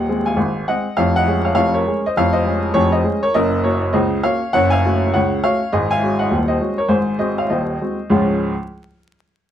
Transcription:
upright piano
Already playing: D#1 D#2 D#5 F#5
0.09 G#3 C4 G#4
0.26 F5 G#5
0.36 G#1 G#2
0.68 G#3 C4 G#4 D#5 F#5
0.97 F1 F2 C#5 F5
1.16 D#5 F#5
1.27 G#3 C#4 G#4
1.45 C#5 F5
1.55 F1 F2 C#5 F5
1.74 A#4 C#5
1.87 G#3 C#4 G#4
2.06 C5 D#5
2.17 F1 F2 C#5 F5
2.33 C5 D#5
2.46 G#3 C#4 G#4
2.74 F1 F2 G#4 C#5
2.92 C5 D#5
3.04 G#3 C#4 G#4
3.23 A#4 C#5
3.34 F#1 F#2 A#4 D#5
3.64 A#3 C#4 F#4 A#4 C#5
3.93 C#2 C#3 C5 D#5
4.23 A#3 C#4 F#4 C#5 F5
4.53 F#1 F#2 C#5 F#5
4.70 F5 G#5
4.84 A3 C#4 F#4
5.14 C#2 C#3 C#5 F#5
5.43 A3 C#4 F#4 C#5 F5
5.73 G#1 G#2 G#4 D#5
5.91 F5 G#5
6.03 G#3 C#4 F#4
6.19 D#5 F#5
6.31 D#1 D#2
6.48 C5 D#5
6.60 G#3 C#4 F#4
6.78 A#4 C#5
6.88 G#1 G#2 G#4 C5
7.19 G#3 C4 F#4 C5 D#5
7.38 C#5 F5
7.50 D#1 D#2 C5 D#5
7.81 G#3 C4 F#4
8.10 C#2 G#2 F3 G#3 C#4 F4 C#5

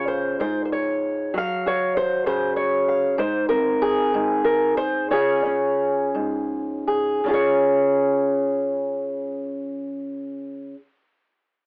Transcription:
steel-string acoustic guitar
Already playing: C#3 F4 F5
0.08 C5
0.40 G#2 C5
0.65 C5
0.72 C#5
1.34 F#3 F5
1.66 F#4 C#5
1.97 C5
2.26 C#3 C5
2.56 C#5
2.88 F5
3.18 G#2 C5
3.49 C4 A#4
3.82 G#4
4.14 G#2
4.44 A#4
4.77 C5
5.11 C#3 C#4 F4 G#4 C#5
5.45 C#4
6.15 G#2
6.87 G#4
7.24 C#3 C#4 F4
7.30 G#4 C#5

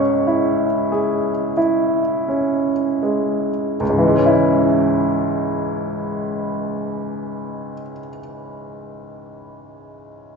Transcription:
grand piano
Already playing: C#2 G#2 G#3 C#4 C#5 C#6
0.27 E4
0.92 G#4
1.57 E4
2.28 C#4
3.03 G#3
3.80 C#2
3.89 G#2
3.98 E3
4.07 G#3
4.16 C#4
4.26 E4

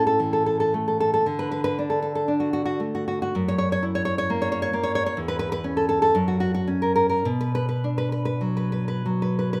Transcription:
nylon-string guitar
Already playing: A2 C#4
0.07 A4
0.20 E3
0.33 A4
0.46 A4
0.60 A4
0.74 A3
0.88 A4
1.00 A4
1.14 A4
1.26 D3
1.39 B4
1.51 B4
1.64 B4
1.79 D4
1.90 A4
2.02 A4
2.15 A4
2.28 D4
2.40 F#4
2.53 F#4
2.66 F#4
2.80 A3
2.95 F#4
3.08 F#4
3.22 F#4
3.35 F#2
3.48 C#5
3.58 C#5
3.72 C#5
3.83 E4
3.95 C#5
4.05 C#5
4.18 C#5
4.30 A#3
4.42 C#5
4.52 C#5
4.62 C#5
4.73 A#3
4.83 C#5
4.95 C#5
5.06 C#5
5.17 E2
5.28 B4
5.39 B4
5.52 B4
5.64 C#4
5.77 A4
5.89 A4
6.02 A4
6.15 F#2
6.28 F#4
6.40 F#4
6.54 F#4
6.68 C#4
6.82 A#4
6.96 A#4
7.09 A#4
7.25 B2
7.41 B4
7.55 B4
7.69 B4
7.84 D4
7.98 B4
8.12 B4
8.25 B4
8.41 F#3
8.57 B4
8.72 B4
8.88 B4
9.06 F#3
9.22 B4
9.39 B4
9.53 B4

